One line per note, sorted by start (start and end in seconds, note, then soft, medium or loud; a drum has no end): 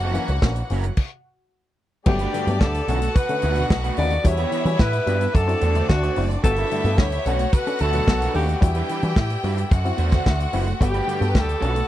0.00 0.17 F#1 loud
0.00 0.96 E3 medium
0.00 0.96 A#3 medium
0.00 0.96 C#4 medium
0.00 0.94 F#4 medium
0.00 0.95 F#4 loud
0.00 0.18 A#4 medium
0.00 0.95 F#5 loud
0.00 closed hi-hat soft
0.05 0.16 F#3 medium
0.05 0.16 C#4 medium
0.05 0.17 E4 medium
0.14 0.28 E3 medium
0.14 0.31 F#3 medium
0.14 0.28 A#3 medium
0.14 0.28 C#4 loud
0.14 0.32 C#4 medium
0.14 closed hi-hat medium
0.18 0.32 E4 medium
0.18 0.31 A#4 medium
0.28 0.38 C#2 medium
0.28 0.34 A#3 soft
0.28 0.34 C#4 soft
0.28 muted clean electric guitar stroke soft
0.28 closed hi-hat soft
0.42 0.61 A#1 medium
0.42 0.56 A#3 medium
0.42 0.56 C#4 medium
0.42 kick loud
0.42 snare loud
0.56 muted clean electric guitar stroke soft
0.56 closed hi-hat medium
0.70 0.89 F#1 medium
0.70 0.90 F#3 medium
0.70 0.83 A#3 medium
0.70 0.83 C#4 medium
0.70 0.86 C#4 medium
0.70 0.86 E4 loud
0.70 0.86 A#4 medium
0.70 open hi-hat medium
0.84 muted clean electric guitar stroke medium
0.84 closed hi-hat medium
0.97 kick loud
0.97 crash medium
2.05 2.26 G1 loud
2.05 2.19 F#3 loud
2.05 2.87 G3 medium
2.05 4.23 A3 medium
2.05 2.20 A3 medium
2.05 5.30 B3 medium
2.05 2.20 B3 loud
2.05 2.87 D4 medium
2.05 2.87 G4 medium
2.05 2.61 G4 medium
2.05 2.86 D5 loud
2.05 muted clean electric guitar stroke soft
2.05 kick loud
2.05 crash loud
2.19 2.33 A3 medium
2.19 2.33 D4 medium
2.19 2.34 F#4 medium
2.19 2.35 B4 medium
2.19 closed hi-hat soft
2.33 2.47 G2 medium
2.33 2.47 D3 medium
2.33 2.49 A3 medium
2.33 2.47 D4 medium
2.33 2.47 F#4 medium
2.33 2.46 B4 medium
2.33 closed hi-hat medium
2.47 2.62 G2 loud
2.47 2.61 F#3 medium
2.47 2.61 A3 medium
2.47 2.61 B3 medium
2.47 muted clean electric guitar stroke soft
2.47 closed hi-hat soft
2.59 2.80 D2 loud
2.59 2.75 G2 medium
2.59 2.75 D3 medium
2.59 3.17 A4 medium
2.59 kick loud
2.59 snare loud
2.75 muted clean electric guitar stroke soft
2.75 closed hi-hat medium
2.87 3.07 B1 loud
2.87 3.02 D3 medium
2.87 4.23 D3 medium
2.87 3.08 A3 medium
2.87 3.01 A3 medium
2.87 3.01 C#4 medium
2.87 3.01 D4 medium
2.87 4.22 F#4 medium
2.87 4.24 F#4 medium
2.87 3.01 F#4 loud
2.87 2.99 B4 medium
2.87 4.22 F#5 loud
2.87 closed hi-hat medium
3.01 3.08 A3 soft
3.01 3.08 C#4 soft
3.01 muted clean electric guitar stroke soft
3.01 closed hi-hat medium
3.15 3.70 B4 loud
3.15 muted clean electric guitar stroke soft
3.15 kick loud
3.15 closed hi-hat medium
3.28 3.42 D3 medium
3.28 3.42 A3 medium
3.28 3.43 C#4 medium
3.28 muted clean electric guitar stroke soft
3.28 closed hi-hat medium
3.42 3.62 D2 medium
3.42 3.57 A3 medium
3.42 3.55 D4 medium
3.42 3.55 F#4 loud
3.42 3.54 B4 medium
3.42 closed hi-hat medium
3.55 3.70 B2 medium
3.55 3.69 A3 medium
3.55 3.69 D4 medium
3.55 3.70 F#4 medium
3.55 3.70 B4 medium
3.55 closed hi-hat medium
3.70 3.90 B1 loud
3.70 3.84 B2 medium
3.70 muted clean electric guitar stroke soft
3.70 kick loud
3.70 snare loud
3.83 3.96 A3 medium
3.83 3.97 D4 medium
3.83 3.97 F#4 medium
3.83 3.98 B4 medium
3.83 closed hi-hat medium
3.97 4.17 D#2 loud
3.97 4.11 D3 medium
3.97 4.13 A3 medium
3.97 4.10 A3 medium
3.97 4.10 C#4 medium
3.97 4.11 D4 medium
3.97 4.10 F#4 medium
3.97 4.09 B4 medium
3.97 4.28 D5 loud
3.97 open hi-hat medium
4.10 4.17 A3 soft
4.10 4.17 C#4 soft
4.10 muted clean electric guitar stroke soft
4.10 closed hi-hat soft
4.24 4.44 E2 loud
4.24 6.41 D3 medium
4.24 5.33 G3 medium
4.24 4.38 G3 loud
4.24 4.38 D4 medium
4.24 5.33 E4 medium
4.24 5.32 E4 loud
4.24 4.38 F#4 loud
4.24 4.82 C#5 loud
4.24 5.31 E5 loud
4.24 muted clean electric guitar stroke medium
4.24 kick loud
4.24 closed hi-hat medium
4.37 4.50 B3 medium
4.37 4.51 D4 medium
4.37 4.52 G4 medium
4.37 4.53 B4 medium
4.37 closed hi-hat soft
4.51 4.65 E3 medium
4.51 4.67 B3 medium
4.51 4.66 D4 medium
4.51 4.65 G4 medium
4.51 4.65 B4 medium
4.51 closed hi-hat medium
4.65 4.75 E3 loud
4.65 4.79 G3 medium
4.65 4.79 D4 medium
4.65 4.79 F#4 medium
4.65 muted clean electric guitar stroke medium
4.65 closed hi-hat soft
4.79 4.99 A2 loud
4.79 4.92 E3 medium
4.79 5.36 B4 loud
4.79 kick loud
4.79 snare loud
4.93 muted clean electric guitar stroke soft
4.93 closed hi-hat medium
5.06 5.26 G2 loud
5.06 5.20 G3 medium
5.06 5.26 B3 medium
5.06 5.19 D4 medium
5.06 5.21 D4 loud
5.06 5.19 F#4 medium
5.06 5.21 G4 loud
5.06 5.20 B4 loud
5.06 closed hi-hat medium
5.20 5.26 D4 soft
5.20 5.26 F#4 soft
5.20 muted clean electric guitar stroke medium
5.20 closed hi-hat medium
5.34 5.54 F#2 loud
5.34 7.24 A3 medium
5.34 6.42 C4 medium
5.34 6.41 D4 medium
5.34 6.42 F#4 medium
5.34 5.88 A4 loud
5.34 6.41 D5 loud
5.34 muted clean electric guitar stroke soft
5.34 kick loud
5.34 closed hi-hat medium
5.47 5.61 C4 medium
5.47 5.61 E4 medium
5.47 5.61 F#4 medium
5.47 muted clean electric guitar stroke medium
5.47 closed hi-hat medium
5.61 5.81 E2 loud
5.61 5.77 A3 medium
5.61 5.76 D4 medium
5.61 5.75 F#4 loud
5.61 5.75 C5 loud
5.61 closed hi-hat medium
5.75 5.88 D3 medium
5.75 5.88 A3 medium
5.75 5.89 D4 medium
5.75 5.89 F#4 medium
5.75 5.89 C5 medium
5.75 closed hi-hat medium
5.88 6.09 D2 loud
5.88 6.02 D3 medium
5.88 6.02 A3 medium
5.88 6.27 F#4 loud
5.88 muted clean electric guitar stroke soft
5.88 kick loud
5.88 snare loud
6.03 6.14 A3 medium
6.03 6.15 D4 medium
6.03 6.15 F#4 medium
6.03 6.16 C5 medium
6.03 closed hi-hat medium
6.16 6.36 F#1 medium
6.16 6.31 A3 medium
6.16 6.30 C4 medium
6.16 6.31 D4 medium
6.16 6.30 E4 medium
6.16 6.30 F#4 medium
6.16 6.30 F#4 loud
6.16 6.29 C5 medium
6.16 open hi-hat medium
6.30 6.36 E4 soft
6.30 6.36 F#4 soft
6.30 muted clean electric guitar stroke medium
6.30 closed hi-hat soft
6.43 6.63 G1 loud
6.43 9.68 B3 medium
6.43 6.57 B3 loud
6.43 7.23 E4 medium
6.43 7.25 F#4 medium
6.43 6.57 F#4 loud
6.43 7.25 G4 medium
6.43 6.99 A4 loud
6.43 6.57 A4 loud
6.43 7.24 E5 loud
6.43 muted clean electric guitar stroke soft
6.43 kick loud
6.43 closed hi-hat medium
6.56 6.71 A3 medium
6.56 6.71 D4 medium
6.56 6.73 F#4 medium
6.56 6.72 B4 medium
6.56 closed hi-hat soft
6.71 6.84 G2 medium
6.71 6.84 D3 medium
6.71 6.87 A3 medium
6.71 6.86 D4 medium
6.71 6.85 F#4 medium
6.71 6.84 B4 medium
6.71 closed hi-hat medium
6.84 6.98 G2 loud
6.84 6.98 B3 medium
6.84 6.98 F#4 medium
6.84 6.98 A4 medium
6.84 muted clean electric guitar stroke soft
6.84 closed hi-hat soft
6.98 7.17 D2 loud
6.98 7.12 G2 medium
6.98 7.12 D3 medium
6.98 7.54 C#5 loud
6.98 kick loud
6.98 snare loud
7.12 muted clean electric guitar stroke soft
7.12 closed hi-hat medium
7.26 7.45 B1 medium
7.26 10.77 D3 medium
7.26 7.45 A3 medium
7.26 8.61 A3 medium
7.26 7.39 C#4 medium
7.26 7.39 D4 medium
7.26 7.41 D4 loud
7.26 8.59 F#4 medium
7.26 8.61 F#4 medium
7.26 7.40 F#4 loud
7.26 7.39 A4 medium
7.26 7.40 B4 loud
7.26 8.59 F#5 loud
7.26 closed hi-hat medium
7.39 7.45 D4 soft
7.39 7.45 A4 soft
7.39 muted clean electric guitar stroke soft
7.39 closed hi-hat medium
7.53 7.82 B4 loud
7.53 muted clean electric guitar stroke soft
7.53 kick loud
7.53 closed hi-hat medium
7.67 7.80 C#4 medium
7.67 7.80 D4 medium
7.67 7.80 A4 medium
7.67 muted clean electric guitar stroke medium
7.67 closed hi-hat medium
7.79 8.00 D2 medium
7.79 7.95 A3 medium
7.79 7.95 D4 loud
7.79 7.94 F#4 loud
7.79 8.34 A4 loud
7.79 closed hi-hat medium
7.83 7.93 B4 loud
7.93 8.06 B2 medium
7.93 8.06 F#3 medium
7.93 8.06 A3 medium
7.93 8.07 D4 medium
7.93 8.07 F#4 medium
7.93 8.08 B4 medium
7.93 closed hi-hat medium
8.07 8.27 B1 loud
8.07 8.20 B2 medium
8.07 8.20 F#3 medium
8.07 muted clean electric guitar stroke soft
8.07 kick loud
8.07 snare loud
8.21 8.33 A3 medium
8.21 8.34 D4 medium
8.21 8.34 F#4 medium
8.21 8.35 B4 medium
8.21 closed hi-hat medium
8.34 8.54 D#2 medium
8.34 8.50 A3 medium
8.34 8.47 C#4 medium
8.34 8.47 D4 medium
8.34 8.50 D4 medium
8.34 8.48 F#4 medium
8.34 8.86 G4 medium
8.34 8.46 A4 medium
8.34 8.48 B4 medium
8.34 open hi-hat medium
8.49 muted clean electric guitar stroke soft
8.49 closed hi-hat soft
8.61 8.81 E2 loud
8.61 8.74 G3 loud
8.61 9.70 G3 medium
8.61 8.75 D4 loud
8.61 9.70 E4 medium
8.61 8.75 F#4 loud
8.61 9.68 G4 loud
8.61 9.68 G5 loud
8.61 muted clean electric guitar stroke soft
8.61 kick loud
8.61 closed hi-hat medium
8.75 8.89 G3 medium
8.75 8.89 D4 medium
8.75 8.90 E4 medium
8.75 8.91 B4 medium
8.75 closed hi-hat soft
8.89 9.02 E3 medium
8.89 9.05 G3 medium
8.89 9.03 D4 medium
8.89 9.03 E4 medium
8.89 9.02 B4 medium
8.89 closed hi-hat medium
9.03 9.13 E3 loud
9.03 9.16 G3 medium
9.03 9.16 D4 medium
9.03 9.16 F#4 medium
9.03 muted clean electric guitar stroke soft
9.03 closed hi-hat soft
9.16 9.35 A2 medium
9.16 9.30 E3 medium
9.16 kick loud
9.16 snare loud
9.30 muted clean electric guitar stroke soft
9.30 closed hi-hat medium
9.44 9.63 G2 medium
9.44 9.57 G3 medium
9.44 9.63 G3 medium
9.44 9.57 D4 medium
9.44 9.57 E4 medium
9.44 9.57 F#4 medium
9.44 9.56 B4 medium
9.44 open hi-hat medium
9.57 9.63 D4 soft
9.57 9.63 F#4 soft
9.57 muted clean electric guitar stroke soft
9.57 closed hi-hat medium
9.70 9.90 F#2 loud
9.70 11.88 A3 medium
9.70 10.79 C4 medium
9.70 10.78 F#4 medium
9.70 10.79 F#4 medium
9.70 10.78 F#5 loud
9.70 muted clean electric guitar stroke medium
9.70 kick loud
9.70 closed hi-hat medium
9.84 9.98 C4 medium
9.84 9.98 E4 medium
9.84 9.98 F#4 medium
9.84 muted clean electric guitar stroke medium
9.84 closed hi-hat soft
9.97 10.18 E2 medium
9.97 10.12 A3 medium
9.97 10.12 D4 medium
9.97 10.11 F#4 medium
9.97 10.10 C5 medium
9.97 closed hi-hat medium
10.11 10.25 D3 medium
10.11 10.25 A3 medium
10.11 10.26 A3 medium
10.11 10.25 D4 soft
10.11 10.26 F#4 medium
10.11 10.26 C5 medium
10.11 kick loud
10.11 snare soft
10.11 closed hi-hat medium
10.26 10.45 D2 loud
10.26 10.39 D3 medium
10.26 10.39 A3 medium
10.26 muted clean electric guitar stroke soft
10.26 kick loud
10.26 snare loud
10.40 muted clean electric guitar stroke soft
10.40 closed hi-hat soft
10.53 10.72 F#1 medium
10.53 10.73 A3 medium
10.53 10.66 C4 medium
10.53 10.67 D4 medium
10.53 10.65 E4 medium
10.53 10.66 F#4 medium
10.53 10.67 F#4 medium
10.53 10.66 C5 medium
10.53 open hi-hat medium
10.67 10.72 E4 soft
10.67 10.72 F#4 soft
10.67 muted clean electric guitar stroke soft
10.67 closed hi-hat soft
10.79 11.00 G1 loud
10.79 11.62 G3 medium
10.79 10.94 B3 loud
10.79 11.62 B3 medium
10.79 10.94 F#4 medium
10.79 11.60 G4 medium
10.79 11.62 G4 medium
10.79 11.31 G4 loud
10.79 10.94 A4 loud
10.79 11.60 G5 loud
10.79 muted clean electric guitar stroke soft
10.79 kick loud
10.79 closed hi-hat medium
10.94 11.06 A3 medium
10.94 11.06 D4 medium
10.94 11.07 F#4 medium
10.94 11.08 B4 medium
10.94 closed hi-hat soft
11.07 11.21 G2 medium
11.07 11.21 D3 medium
11.07 11.23 A3 medium
11.07 11.20 D4 medium
11.07 11.20 F#4 medium
11.07 11.19 B4 medium
11.07 closed hi-hat medium
11.20 11.35 G2 loud
11.20 11.34 B3 medium
11.20 11.35 F#4 medium
11.20 11.35 A4 medium
11.20 muted clean electric guitar stroke soft
11.20 closed hi-hat soft
11.29 11.40 B4 medium
11.35 11.54 D2 loud
11.35 11.48 G2 medium
11.35 11.48 D3 medium
11.35 kick loud
11.35 snare loud
11.39 11.88 A4 loud
11.48 muted clean electric guitar stroke soft
11.48 closed hi-hat soft
11.60 11.81 B1 medium
11.60 11.88 D3 medium
11.60 11.81 A3 medium
11.60 11.88 B3 medium
11.60 11.75 C#4 medium
11.60 11.75 D4 loud
11.60 11.75 D4 medium
11.60 11.75 F#4 loud
11.60 11.88 F#4 medium
11.60 11.75 A4 medium
11.60 11.74 B4 loud
11.60 11.88 F#5 loud
11.60 closed hi-hat medium
11.75 11.82 D4 soft
11.75 11.82 A4 soft
11.75 muted clean electric guitar stroke soft
11.75 closed hi-hat medium